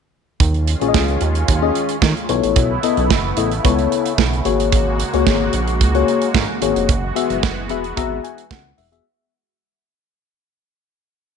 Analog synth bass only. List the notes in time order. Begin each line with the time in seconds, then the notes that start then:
0.40 D#2
0.82 A#1
0.94 C#2
1.21 D#2
1.48 D#2
2.02 D#3
2.29 B1
2.44 A1
2.56 B1
2.98 B1
3.10 F#1
3.37 A1
3.65 C#2
4.18 B1
4.45 G#1
5.14 C#2
5.27 G#1
5.54 A#1
5.81 C#2
6.35 G#2
6.62 G#1
6.76 F1
6.89 F#1
7.30 F#1
7.43 F#1
7.70 E1
7.97 G#1
8.51 C#2
8.78 E1